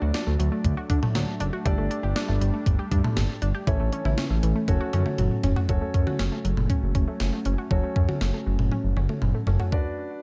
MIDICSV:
0, 0, Header, 1, 6, 480
1, 0, Start_track
1, 0, Tempo, 504202
1, 1577, Time_signature, 4, 2, 24, 8
1, 9731, End_track
2, 0, Start_track
2, 0, Title_t, "Grand piano"
2, 0, Program_c, 0, 0
2, 0, Note_on_c, 0, 62, 74
2, 0, Note_on_c, 0, 66, 70
2, 0, Note_on_c, 0, 69, 66
2, 0, Note_on_c, 0, 74, 82
2, 1537, Note_off_c, 0, 66, 0
2, 1537, Note_off_c, 0, 69, 0
2, 1538, Note_off_c, 0, 62, 0
2, 1538, Note_off_c, 0, 74, 0
2, 1576, Note_on_c, 0, 69, 71
2, 1577, Note_on_c, 0, 62, 77
2, 1577, Note_on_c, 0, 67, 66
2, 1577, Note_on_c, 0, 74, 84
2, 3458, Note_off_c, 0, 62, 0
2, 3458, Note_off_c, 0, 67, 0
2, 3458, Note_off_c, 0, 69, 0
2, 3459, Note_off_c, 0, 74, 0
2, 3497, Note_on_c, 0, 61, 74
2, 3497, Note_on_c, 0, 64, 67
2, 3497, Note_on_c, 0, 69, 69
2, 3497, Note_on_c, 0, 73, 80
2, 4437, Note_off_c, 0, 61, 0
2, 4437, Note_off_c, 0, 64, 0
2, 4437, Note_off_c, 0, 69, 0
2, 4437, Note_off_c, 0, 73, 0
2, 4456, Note_on_c, 0, 61, 73
2, 4457, Note_on_c, 0, 66, 68
2, 4457, Note_on_c, 0, 69, 71
2, 4457, Note_on_c, 0, 73, 82
2, 5397, Note_off_c, 0, 61, 0
2, 5397, Note_off_c, 0, 66, 0
2, 5397, Note_off_c, 0, 69, 0
2, 5398, Note_off_c, 0, 73, 0
2, 5416, Note_on_c, 0, 61, 69
2, 5416, Note_on_c, 0, 66, 66
2, 5416, Note_on_c, 0, 69, 67
2, 5417, Note_on_c, 0, 73, 79
2, 7298, Note_off_c, 0, 61, 0
2, 7298, Note_off_c, 0, 66, 0
2, 7298, Note_off_c, 0, 69, 0
2, 7298, Note_off_c, 0, 73, 0
2, 7337, Note_on_c, 0, 66, 68
2, 7338, Note_on_c, 0, 61, 72
2, 7338, Note_on_c, 0, 69, 64
2, 7338, Note_on_c, 0, 73, 79
2, 8983, Note_off_c, 0, 61, 0
2, 8983, Note_off_c, 0, 66, 0
2, 8983, Note_off_c, 0, 73, 0
2, 8984, Note_off_c, 0, 69, 0
2, 9017, Note_on_c, 0, 61, 52
2, 9017, Note_on_c, 0, 66, 50
2, 9017, Note_on_c, 0, 69, 49
2, 9018, Note_on_c, 0, 73, 58
2, 9243, Note_off_c, 0, 66, 0
2, 9257, Note_off_c, 0, 61, 0
2, 9257, Note_off_c, 0, 69, 0
2, 9257, Note_off_c, 0, 73, 0
2, 9257, Note_on_c, 0, 62, 67
2, 9257, Note_on_c, 0, 66, 63
2, 9258, Note_on_c, 0, 71, 62
2, 9258, Note_on_c, 0, 74, 73
2, 9731, Note_off_c, 0, 62, 0
2, 9731, Note_off_c, 0, 66, 0
2, 9731, Note_off_c, 0, 71, 0
2, 9731, Note_off_c, 0, 74, 0
2, 9731, End_track
3, 0, Start_track
3, 0, Title_t, "Synth arpeggio sound"
3, 0, Program_c, 1, 84
3, 17, Note_on_c, 1, 66, 79
3, 98, Note_off_c, 1, 66, 0
3, 137, Note_on_c, 1, 62, 91
3, 219, Note_off_c, 1, 62, 0
3, 256, Note_on_c, 1, 57, 76
3, 338, Note_off_c, 1, 57, 0
3, 375, Note_on_c, 1, 54, 81
3, 457, Note_off_c, 1, 54, 0
3, 494, Note_on_c, 1, 57, 73
3, 576, Note_off_c, 1, 57, 0
3, 736, Note_on_c, 1, 66, 79
3, 818, Note_off_c, 1, 66, 0
3, 854, Note_on_c, 1, 62, 86
3, 936, Note_off_c, 1, 62, 0
3, 976, Note_on_c, 1, 57, 79
3, 1058, Note_off_c, 1, 57, 0
3, 1096, Note_on_c, 1, 54, 86
3, 1178, Note_off_c, 1, 54, 0
3, 1336, Note_on_c, 1, 62, 84
3, 1418, Note_off_c, 1, 62, 0
3, 1456, Note_on_c, 1, 66, 80
3, 1538, Note_off_c, 1, 66, 0
3, 1574, Note_on_c, 1, 55, 99
3, 1657, Note_off_c, 1, 55, 0
3, 1696, Note_on_c, 1, 57, 76
3, 1778, Note_off_c, 1, 57, 0
3, 1814, Note_on_c, 1, 62, 82
3, 1896, Note_off_c, 1, 62, 0
3, 1934, Note_on_c, 1, 67, 80
3, 2017, Note_off_c, 1, 67, 0
3, 2054, Note_on_c, 1, 62, 91
3, 2137, Note_off_c, 1, 62, 0
3, 2173, Note_on_c, 1, 57, 73
3, 2256, Note_off_c, 1, 57, 0
3, 2295, Note_on_c, 1, 55, 80
3, 2377, Note_off_c, 1, 55, 0
3, 2415, Note_on_c, 1, 57, 73
3, 2498, Note_off_c, 1, 57, 0
3, 2656, Note_on_c, 1, 67, 78
3, 2738, Note_off_c, 1, 67, 0
3, 2774, Note_on_c, 1, 62, 84
3, 2857, Note_off_c, 1, 62, 0
3, 2895, Note_on_c, 1, 57, 77
3, 2977, Note_off_c, 1, 57, 0
3, 3013, Note_on_c, 1, 55, 84
3, 3096, Note_off_c, 1, 55, 0
3, 3255, Note_on_c, 1, 62, 86
3, 3338, Note_off_c, 1, 62, 0
3, 3376, Note_on_c, 1, 67, 83
3, 3458, Note_off_c, 1, 67, 0
3, 3495, Note_on_c, 1, 52, 92
3, 3577, Note_off_c, 1, 52, 0
3, 3618, Note_on_c, 1, 57, 75
3, 3699, Note_off_c, 1, 57, 0
3, 3739, Note_on_c, 1, 61, 85
3, 3820, Note_off_c, 1, 61, 0
3, 3859, Note_on_c, 1, 64, 79
3, 3940, Note_off_c, 1, 64, 0
3, 3976, Note_on_c, 1, 61, 89
3, 4058, Note_off_c, 1, 61, 0
3, 4097, Note_on_c, 1, 57, 75
3, 4179, Note_off_c, 1, 57, 0
3, 4217, Note_on_c, 1, 52, 80
3, 4299, Note_off_c, 1, 52, 0
3, 4337, Note_on_c, 1, 57, 75
3, 4419, Note_off_c, 1, 57, 0
3, 4575, Note_on_c, 1, 66, 81
3, 4657, Note_off_c, 1, 66, 0
3, 4697, Note_on_c, 1, 61, 89
3, 4779, Note_off_c, 1, 61, 0
3, 4818, Note_on_c, 1, 57, 77
3, 4899, Note_off_c, 1, 57, 0
3, 4939, Note_on_c, 1, 54, 88
3, 5020, Note_off_c, 1, 54, 0
3, 5176, Note_on_c, 1, 61, 82
3, 5258, Note_off_c, 1, 61, 0
3, 5296, Note_on_c, 1, 66, 82
3, 5378, Note_off_c, 1, 66, 0
3, 5415, Note_on_c, 1, 54, 93
3, 5497, Note_off_c, 1, 54, 0
3, 5535, Note_on_c, 1, 57, 74
3, 5617, Note_off_c, 1, 57, 0
3, 5657, Note_on_c, 1, 61, 80
3, 5738, Note_off_c, 1, 61, 0
3, 5776, Note_on_c, 1, 66, 75
3, 5858, Note_off_c, 1, 66, 0
3, 5895, Note_on_c, 1, 61, 91
3, 5977, Note_off_c, 1, 61, 0
3, 6017, Note_on_c, 1, 57, 75
3, 6099, Note_off_c, 1, 57, 0
3, 6136, Note_on_c, 1, 54, 78
3, 6218, Note_off_c, 1, 54, 0
3, 6377, Note_on_c, 1, 61, 91
3, 6459, Note_off_c, 1, 61, 0
3, 6617, Note_on_c, 1, 61, 83
3, 6699, Note_off_c, 1, 61, 0
3, 6737, Note_on_c, 1, 57, 75
3, 6819, Note_off_c, 1, 57, 0
3, 6977, Note_on_c, 1, 57, 77
3, 7059, Note_off_c, 1, 57, 0
3, 7099, Note_on_c, 1, 61, 82
3, 7180, Note_off_c, 1, 61, 0
3, 7218, Note_on_c, 1, 66, 80
3, 7299, Note_off_c, 1, 66, 0
3, 7338, Note_on_c, 1, 54, 91
3, 7419, Note_off_c, 1, 54, 0
3, 7459, Note_on_c, 1, 57, 74
3, 7540, Note_off_c, 1, 57, 0
3, 7578, Note_on_c, 1, 61, 83
3, 7659, Note_off_c, 1, 61, 0
3, 7698, Note_on_c, 1, 66, 77
3, 7779, Note_off_c, 1, 66, 0
3, 7818, Note_on_c, 1, 61, 90
3, 7899, Note_off_c, 1, 61, 0
3, 7939, Note_on_c, 1, 57, 74
3, 8020, Note_off_c, 1, 57, 0
3, 8058, Note_on_c, 1, 54, 76
3, 8139, Note_off_c, 1, 54, 0
3, 8299, Note_on_c, 1, 61, 92
3, 8380, Note_off_c, 1, 61, 0
3, 8538, Note_on_c, 1, 61, 83
3, 8619, Note_off_c, 1, 61, 0
3, 8658, Note_on_c, 1, 57, 75
3, 8739, Note_off_c, 1, 57, 0
3, 8897, Note_on_c, 1, 57, 75
3, 8978, Note_off_c, 1, 57, 0
3, 9018, Note_on_c, 1, 61, 81
3, 9099, Note_off_c, 1, 61, 0
3, 9137, Note_on_c, 1, 66, 78
3, 9219, Note_off_c, 1, 66, 0
3, 9731, End_track
4, 0, Start_track
4, 0, Title_t, "Analog synth pad"
4, 0, Program_c, 2, 89
4, 0, Note_on_c, 2, 54, 78
4, 0, Note_on_c, 2, 57, 70
4, 0, Note_on_c, 2, 62, 83
4, 1540, Note_off_c, 2, 54, 0
4, 1540, Note_off_c, 2, 62, 0
4, 1575, Note_on_c, 2, 55, 77
4, 1576, Note_on_c, 2, 62, 86
4, 3458, Note_off_c, 2, 57, 0
4, 3476, Note_off_c, 2, 55, 0
4, 3477, Note_off_c, 2, 62, 0
4, 3497, Note_on_c, 2, 52, 70
4, 3498, Note_on_c, 2, 57, 68
4, 3499, Note_on_c, 2, 61, 87
4, 4447, Note_off_c, 2, 52, 0
4, 4457, Note_on_c, 2, 54, 77
4, 5398, Note_off_c, 2, 57, 0
4, 5398, Note_off_c, 2, 61, 0
4, 5405, Note_off_c, 2, 54, 0
4, 5416, Note_on_c, 2, 54, 75
4, 5416, Note_on_c, 2, 61, 80
4, 5417, Note_on_c, 2, 57, 71
4, 9218, Note_off_c, 2, 54, 0
4, 9218, Note_off_c, 2, 57, 0
4, 9218, Note_off_c, 2, 61, 0
4, 9731, End_track
5, 0, Start_track
5, 0, Title_t, "Analog synth bass"
5, 0, Program_c, 3, 38
5, 17, Note_on_c, 3, 38, 105
5, 113, Note_off_c, 3, 38, 0
5, 257, Note_on_c, 3, 38, 97
5, 353, Note_off_c, 3, 38, 0
5, 377, Note_on_c, 3, 38, 108
5, 473, Note_off_c, 3, 38, 0
5, 615, Note_on_c, 3, 38, 115
5, 712, Note_off_c, 3, 38, 0
5, 855, Note_on_c, 3, 50, 98
5, 952, Note_off_c, 3, 50, 0
5, 1098, Note_on_c, 3, 38, 104
5, 1193, Note_off_c, 3, 38, 0
5, 1337, Note_on_c, 3, 30, 90
5, 1433, Note_off_c, 3, 30, 0
5, 1577, Note_on_c, 3, 31, 104
5, 1673, Note_off_c, 3, 31, 0
5, 1696, Note_on_c, 3, 31, 101
5, 1792, Note_off_c, 3, 31, 0
5, 1936, Note_on_c, 3, 31, 101
5, 2032, Note_off_c, 3, 31, 0
5, 2176, Note_on_c, 3, 31, 104
5, 2272, Note_off_c, 3, 31, 0
5, 2296, Note_on_c, 3, 31, 105
5, 2392, Note_off_c, 3, 31, 0
5, 2535, Note_on_c, 3, 31, 113
5, 2632, Note_off_c, 3, 31, 0
5, 2775, Note_on_c, 3, 43, 99
5, 2872, Note_off_c, 3, 43, 0
5, 3017, Note_on_c, 3, 31, 105
5, 3113, Note_off_c, 3, 31, 0
5, 3256, Note_on_c, 3, 31, 97
5, 3352, Note_off_c, 3, 31, 0
5, 3497, Note_on_c, 3, 33, 105
5, 3593, Note_off_c, 3, 33, 0
5, 3615, Note_on_c, 3, 33, 104
5, 3711, Note_off_c, 3, 33, 0
5, 3855, Note_on_c, 3, 33, 99
5, 3952, Note_off_c, 3, 33, 0
5, 4095, Note_on_c, 3, 33, 101
5, 4192, Note_off_c, 3, 33, 0
5, 4215, Note_on_c, 3, 33, 112
5, 4312, Note_off_c, 3, 33, 0
5, 4455, Note_on_c, 3, 30, 105
5, 4552, Note_off_c, 3, 30, 0
5, 4696, Note_on_c, 3, 42, 101
5, 4792, Note_off_c, 3, 42, 0
5, 4936, Note_on_c, 3, 30, 101
5, 5032, Note_off_c, 3, 30, 0
5, 5176, Note_on_c, 3, 28, 91
5, 5272, Note_off_c, 3, 28, 0
5, 5417, Note_on_c, 3, 30, 101
5, 5513, Note_off_c, 3, 30, 0
5, 5657, Note_on_c, 3, 42, 91
5, 5753, Note_off_c, 3, 42, 0
5, 5897, Note_on_c, 3, 30, 92
5, 5993, Note_off_c, 3, 30, 0
5, 6137, Note_on_c, 3, 30, 100
5, 6233, Note_off_c, 3, 30, 0
5, 6257, Note_on_c, 3, 30, 98
5, 6353, Note_off_c, 3, 30, 0
5, 6498, Note_on_c, 3, 30, 99
5, 6593, Note_off_c, 3, 30, 0
5, 6616, Note_on_c, 3, 30, 89
5, 6712, Note_off_c, 3, 30, 0
5, 6857, Note_on_c, 3, 30, 107
5, 6953, Note_off_c, 3, 30, 0
5, 7097, Note_on_c, 3, 30, 106
5, 7193, Note_off_c, 3, 30, 0
5, 7336, Note_on_c, 3, 30, 106
5, 7433, Note_off_c, 3, 30, 0
5, 7577, Note_on_c, 3, 42, 95
5, 7673, Note_off_c, 3, 42, 0
5, 7818, Note_on_c, 3, 30, 101
5, 7913, Note_off_c, 3, 30, 0
5, 8057, Note_on_c, 3, 30, 106
5, 8153, Note_off_c, 3, 30, 0
5, 8178, Note_on_c, 3, 30, 95
5, 8274, Note_off_c, 3, 30, 0
5, 8417, Note_on_c, 3, 30, 93
5, 8513, Note_off_c, 3, 30, 0
5, 8536, Note_on_c, 3, 30, 96
5, 8633, Note_off_c, 3, 30, 0
5, 8778, Note_on_c, 3, 30, 98
5, 8873, Note_off_c, 3, 30, 0
5, 9017, Note_on_c, 3, 30, 98
5, 9113, Note_off_c, 3, 30, 0
5, 9731, End_track
6, 0, Start_track
6, 0, Title_t, "Drums"
6, 135, Note_on_c, 9, 42, 79
6, 136, Note_on_c, 9, 38, 124
6, 230, Note_off_c, 9, 42, 0
6, 232, Note_off_c, 9, 38, 0
6, 379, Note_on_c, 9, 42, 81
6, 474, Note_off_c, 9, 42, 0
6, 615, Note_on_c, 9, 36, 97
6, 618, Note_on_c, 9, 42, 74
6, 710, Note_off_c, 9, 36, 0
6, 713, Note_off_c, 9, 42, 0
6, 854, Note_on_c, 9, 42, 75
6, 855, Note_on_c, 9, 36, 89
6, 949, Note_off_c, 9, 42, 0
6, 950, Note_off_c, 9, 36, 0
6, 978, Note_on_c, 9, 45, 107
6, 1073, Note_off_c, 9, 45, 0
6, 1095, Note_on_c, 9, 42, 77
6, 1097, Note_on_c, 9, 38, 118
6, 1190, Note_off_c, 9, 42, 0
6, 1192, Note_off_c, 9, 38, 0
6, 1335, Note_on_c, 9, 42, 70
6, 1430, Note_off_c, 9, 42, 0
6, 1576, Note_on_c, 9, 42, 80
6, 1577, Note_on_c, 9, 36, 123
6, 1671, Note_off_c, 9, 42, 0
6, 1672, Note_off_c, 9, 36, 0
6, 1817, Note_on_c, 9, 42, 72
6, 1912, Note_off_c, 9, 42, 0
6, 2055, Note_on_c, 9, 42, 77
6, 2056, Note_on_c, 9, 38, 126
6, 2150, Note_off_c, 9, 42, 0
6, 2151, Note_off_c, 9, 38, 0
6, 2299, Note_on_c, 9, 42, 80
6, 2394, Note_off_c, 9, 42, 0
6, 2535, Note_on_c, 9, 36, 96
6, 2539, Note_on_c, 9, 42, 75
6, 2630, Note_off_c, 9, 36, 0
6, 2634, Note_off_c, 9, 42, 0
6, 2775, Note_on_c, 9, 36, 92
6, 2776, Note_on_c, 9, 42, 74
6, 2871, Note_off_c, 9, 36, 0
6, 2871, Note_off_c, 9, 42, 0
6, 2899, Note_on_c, 9, 45, 105
6, 2994, Note_off_c, 9, 45, 0
6, 3014, Note_on_c, 9, 42, 75
6, 3016, Note_on_c, 9, 38, 120
6, 3109, Note_off_c, 9, 42, 0
6, 3111, Note_off_c, 9, 38, 0
6, 3255, Note_on_c, 9, 42, 68
6, 3350, Note_off_c, 9, 42, 0
6, 3496, Note_on_c, 9, 42, 78
6, 3497, Note_on_c, 9, 36, 122
6, 3591, Note_off_c, 9, 42, 0
6, 3592, Note_off_c, 9, 36, 0
6, 3737, Note_on_c, 9, 42, 69
6, 3832, Note_off_c, 9, 42, 0
6, 3859, Note_on_c, 9, 47, 103
6, 3954, Note_off_c, 9, 47, 0
6, 3976, Note_on_c, 9, 42, 77
6, 3977, Note_on_c, 9, 38, 127
6, 4071, Note_off_c, 9, 42, 0
6, 4073, Note_off_c, 9, 38, 0
6, 4218, Note_on_c, 9, 42, 82
6, 4314, Note_off_c, 9, 42, 0
6, 4455, Note_on_c, 9, 36, 97
6, 4458, Note_on_c, 9, 48, 63
6, 4459, Note_on_c, 9, 42, 72
6, 4551, Note_off_c, 9, 36, 0
6, 4553, Note_off_c, 9, 48, 0
6, 4555, Note_off_c, 9, 42, 0
6, 4695, Note_on_c, 9, 42, 72
6, 4696, Note_on_c, 9, 47, 75
6, 4790, Note_off_c, 9, 42, 0
6, 4791, Note_off_c, 9, 47, 0
6, 4815, Note_on_c, 9, 47, 72
6, 4910, Note_off_c, 9, 47, 0
6, 4935, Note_on_c, 9, 42, 73
6, 4937, Note_on_c, 9, 45, 91
6, 5030, Note_off_c, 9, 42, 0
6, 5032, Note_off_c, 9, 45, 0
6, 5174, Note_on_c, 9, 42, 70
6, 5176, Note_on_c, 9, 43, 99
6, 5270, Note_off_c, 9, 42, 0
6, 5271, Note_off_c, 9, 43, 0
6, 5298, Note_on_c, 9, 43, 90
6, 5393, Note_off_c, 9, 43, 0
6, 5416, Note_on_c, 9, 42, 76
6, 5417, Note_on_c, 9, 36, 120
6, 5511, Note_off_c, 9, 42, 0
6, 5512, Note_off_c, 9, 36, 0
6, 5657, Note_on_c, 9, 36, 92
6, 5657, Note_on_c, 9, 42, 68
6, 5752, Note_off_c, 9, 36, 0
6, 5752, Note_off_c, 9, 42, 0
6, 5778, Note_on_c, 9, 47, 104
6, 5873, Note_off_c, 9, 47, 0
6, 5895, Note_on_c, 9, 42, 75
6, 5896, Note_on_c, 9, 38, 120
6, 5991, Note_off_c, 9, 42, 0
6, 5992, Note_off_c, 9, 38, 0
6, 6138, Note_on_c, 9, 42, 77
6, 6234, Note_off_c, 9, 42, 0
6, 6258, Note_on_c, 9, 45, 85
6, 6353, Note_off_c, 9, 45, 0
6, 6375, Note_on_c, 9, 36, 94
6, 6379, Note_on_c, 9, 42, 73
6, 6470, Note_off_c, 9, 36, 0
6, 6474, Note_off_c, 9, 42, 0
6, 6616, Note_on_c, 9, 36, 90
6, 6617, Note_on_c, 9, 42, 74
6, 6711, Note_off_c, 9, 36, 0
6, 6712, Note_off_c, 9, 42, 0
6, 6854, Note_on_c, 9, 42, 72
6, 6856, Note_on_c, 9, 38, 113
6, 6949, Note_off_c, 9, 42, 0
6, 6951, Note_off_c, 9, 38, 0
6, 7095, Note_on_c, 9, 42, 65
6, 7190, Note_off_c, 9, 42, 0
6, 7337, Note_on_c, 9, 36, 116
6, 7432, Note_off_c, 9, 36, 0
6, 7577, Note_on_c, 9, 36, 90
6, 7672, Note_off_c, 9, 36, 0
6, 7698, Note_on_c, 9, 47, 103
6, 7793, Note_off_c, 9, 47, 0
6, 7817, Note_on_c, 9, 38, 122
6, 7912, Note_off_c, 9, 38, 0
6, 8177, Note_on_c, 9, 45, 88
6, 8272, Note_off_c, 9, 45, 0
6, 8297, Note_on_c, 9, 48, 58
6, 8392, Note_off_c, 9, 48, 0
6, 8536, Note_on_c, 9, 47, 66
6, 8631, Note_off_c, 9, 47, 0
6, 8656, Note_on_c, 9, 47, 64
6, 8751, Note_off_c, 9, 47, 0
6, 8775, Note_on_c, 9, 45, 82
6, 8870, Note_off_c, 9, 45, 0
6, 9014, Note_on_c, 9, 43, 93
6, 9109, Note_off_c, 9, 43, 0
6, 9135, Note_on_c, 9, 43, 85
6, 9231, Note_off_c, 9, 43, 0
6, 9257, Note_on_c, 9, 36, 112
6, 9352, Note_off_c, 9, 36, 0
6, 9731, End_track
0, 0, End_of_file